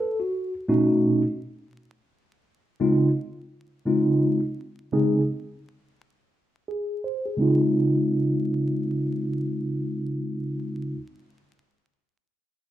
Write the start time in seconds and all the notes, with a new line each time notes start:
Already playing: A4
0.20 F#4
0.69 B2 A3 C#4 D#4 F#4
2.80 C#3 G#3 C4 D#4 F4
3.86 C#3 G#3 C4 D#4 F4
4.92 C#3 G#3 C4 D#4 G#4
6.68 G#4
7.04 C5
7.26 G#4
7.36 C#3 G#3 C4 D#4
7.42 F4